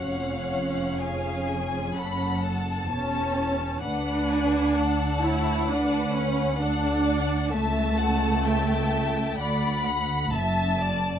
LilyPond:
<<
  \new Staff \with { instrumentName = "Violin section" } { \time 4/4 \key d \lydian \tempo 4 = 64 fis''4 gis''4 b''8 a''4. | fis''4 fis''2. | a''4 a''4 b''4 a''4 | }
  \new Staff \with { instrumentName = "Violin section" } { \time 4/4 \key d \lydian << { eis''4 eis''8 gis''8 fis''4 a''4 | fis''8 gis''8 a''4 fis''4 fis''4 | a''4 g''4 fis''4 a''4 | } \\ { cis''4 gis'4 a'4 cis''4 | b'4 a'8 cis''8 b'4 a'8 d''8 | e''8 fis''8 e''4 d''8 fis''8 e''8 d''8 | } >> }
  \new Staff \with { instrumentName = "Viola section" } { \time 4/4 \key d \lydian cis'2~ cis'8 r8 cis'4 | d'4. e'8 d'8 cis'8 d'4 | a2~ a8 r4. | }
  \new Staff \with { instrumentName = "Cello section" } { \clef bass \time 4/4 \key d \lydian eis,2 fis,4 e,4 | d,1 | cis,2 d,4 fis,4 | }
  \new Staff \with { instrumentName = "Double bass section" } { \clef bass \time 4/4 \key d \lydian eis,,2 fis,,4 e,,4 | d,1 | cis,2 d,4 fis,,4 | }
>>